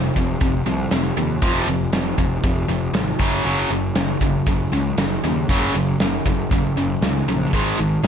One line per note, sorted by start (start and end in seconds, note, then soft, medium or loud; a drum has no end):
0.00 0.14 F2 medium
0.00 0.15 C3 medium
0.16 0.34 F1 medium
0.16 0.39 F2 medium
0.16 0.39 C3 medium
0.16 kick medium
0.16 open hi-hat medium
0.41 0.60 F1 medium
0.41 0.64 F2 medium
0.41 0.64 C3 medium
0.41 kick loud
0.41 open hi-hat medium
0.66 0.85 C2 medium
0.66 0.89 F2 medium
0.66 0.90 C3 medium
0.66 open hi-hat medium
0.91 1.10 F1 medium
0.91 1.15 F2 medium
0.91 1.15 C3 medium
0.91 snare loud
0.91 open hi-hat medium
1.17 1.36 D#2 medium
1.17 1.40 F2 medium
1.17 1.40 C3 medium
1.17 open hi-hat soft
1.42 1.61 F1 medium
1.42 1.66 F2 medium
1.42 1.67 C3 medium
1.42 1.67 F3 medium
1.42 kick loud
1.42 open hi-hat medium
1.68 1.86 F1 medium
1.68 1.91 F2 medium
1.68 1.91 C3 medium
1.68 open hi-hat soft
1.93 2.11 F1 medium
1.93 2.16 F2 medium
1.93 2.16 C3 medium
1.93 snare loud
1.93 open hi-hat medium
2.18 2.37 F1 medium
2.18 2.42 F2 medium
2.18 2.42 C3 medium
2.18 kick medium
2.18 open hi-hat soft
2.43 2.62 F1 medium
2.43 2.67 F2 medium
2.43 2.67 C3 medium
2.43 kick loud
2.43 open hi-hat medium
2.68 2.87 F1 medium
2.68 2.92 F2 medium
2.68 2.92 C3 medium
2.68 open hi-hat soft
2.93 3.12 G#1 medium
2.93 3.17 F2 medium
2.93 3.18 C3 medium
2.93 snare loud
2.93 open hi-hat medium
3.19 3.38 F#1 medium
3.19 3.43 F#2 medium
3.19 3.44 C#3 medium
3.19 3.44 F#3 loud
3.19 kick loud
3.19 open hi-hat soft
3.44 3.64 F#1 medium
3.44 3.69 F#2 medium
3.44 3.70 C#3 medium
3.44 3.70 F#3 medium
3.44 open hi-hat medium
3.70 3.89 F#1 medium
3.70 3.94 F#2 medium
3.70 3.94 C#3 medium
3.70 open hi-hat soft
3.95 4.15 F#1 medium
3.95 4.19 F#2 medium
3.95 4.19 C#3 medium
3.95 snare loud
3.95 open hi-hat medium
4.21 4.40 F#1 medium
4.21 4.45 F#2 medium
4.21 4.45 C#3 medium
4.21 kick medium
4.21 open hi-hat soft
4.46 4.65 F#1 medium
4.46 4.71 F#2 medium
4.46 4.71 C#3 medium
4.46 kick loud
4.46 open hi-hat medium
4.72 4.91 C#2 medium
4.72 4.96 F#2 medium
4.72 4.96 C#3 medium
4.72 open hi-hat soft
4.98 5.17 F#1 medium
4.98 5.21 F#2 medium
4.98 5.22 C#3 medium
4.98 snare loud
4.98 open hi-hat medium
5.24 5.42 D#2 medium
5.24 5.47 F#2 medium
5.24 5.48 C#3 medium
5.24 open hi-hat medium
5.49 5.68 F#1 medium
5.49 5.74 F#2 medium
5.49 5.74 C#3 medium
5.49 5.75 F#3 loud
5.49 kick loud
5.49 open hi-hat medium
5.74 5.93 F#1 medium
5.74 5.98 F#2 medium
5.74 5.98 C#3 medium
5.74 open hi-hat medium
6.00 6.19 F#1 medium
6.00 6.24 F#2 medium
6.00 6.24 C#3 medium
6.00 snare loud
6.00 open hi-hat medium
6.26 6.44 F#1 medium
6.26 6.49 F#2 medium
6.26 6.49 C#3 medium
6.26 kick medium
6.26 open hi-hat medium
6.51 6.70 F#1 medium
6.51 6.75 F#2 medium
6.51 6.75 C#3 medium
6.51 kick loud
6.51 open hi-hat medium
6.77 6.96 F#1 medium
6.77 7.00 F#2 medium
6.77 7.00 C#3 medium
6.77 open hi-hat soft
7.02 7.21 C#2 medium
7.02 7.25 F#2 medium
7.02 7.26 C#3 medium
7.02 snare loud
7.02 open hi-hat medium
7.27 7.45 A#1 medium
7.27 7.51 F#2 medium
7.27 7.51 C#3 medium
7.27 open hi-hat soft
7.53 7.71 G#1 medium
7.53 7.77 G#2 medium
7.53 7.77 D#3 medium
7.53 7.78 G#3 medium
7.53 kick medium
7.53 open hi-hat medium
7.79 7.97 G#1 medium
7.79 8.02 G#2 medium
7.79 8.02 D#3 medium
7.79 open hi-hat soft
8.03 8.07 G#1 medium
8.03 8.07 G#2 medium
8.03 open hi-hat medium